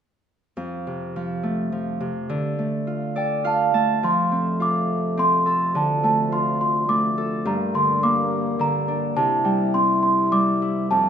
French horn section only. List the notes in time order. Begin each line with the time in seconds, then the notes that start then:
4.04 F2 C3 A3
5.75 D2 F3
7.47 G2 D3 A#3
9.16 C3 G3 E4
10.90 F2 D3 A3